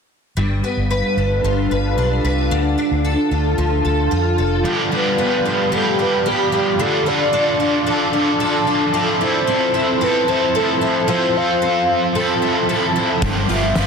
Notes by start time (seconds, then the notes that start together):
0.37 G1 G2 G3 D4 A4 B4 F5
0.64 B3
0.77 G1
0.91 B4
1.17 G1 D4
1.44 G1 F3
1.71 G1 B4
1.97 B1 D4
2.24 C2 B4
2.51 D2 D3 F4 A5
2.78 D4
2.91 D2
3.05 A4
3.31 D2 F4
3.58 D2 F3
3.85 D2 A4
4.11 F2 F4
4.38 F1 A4
4.64 G2 D3 F3 B3 D4 G4 D5 F5 B5
4.91 F3 B3 D4 F4 G4
4.95 B4
5.18 B3
5.46 F4
5.69 F3 B3 G4
5.75 D4 G4 A4
5.99 F4 B4
6.26 G4
6.52 F4 G4
6.78 D3 F3 D4 F4 A4 A5 D6
7.05 F4 A4 D5
7.09 D4
7.33 D4
7.60 F4
7.84 F3 D4 A4
7.90 F4 A4
8.13 F4
8.40 A4
8.67 F4
8.93 F3 C4 E4 A4 C5 C6
9.19 E4 A4 C5
9.23 C4
9.47 C4
9.74 E4
9.98 F3 C4 A4
10.03 E4 A4 B4
10.28 E4 C5
10.55 A4
10.81 E4 A4
11.07 F3 C4 E4 A4 C5
11.33 A4 F5
11.38 C4
11.62 C4
12.12 F3 C4 A4
12.19 E4 A4
12.42 E4
12.69 A4
12.96 E4
13.21 G1 G2 D3 F3 B3 F4 G4 D5 G5 B5, kick, closed hi-hat
13.48 G1 F3 B3 F4 G4 E5, closed hi-hat
13.75 G1 B3 F5, snare, closed hi-hat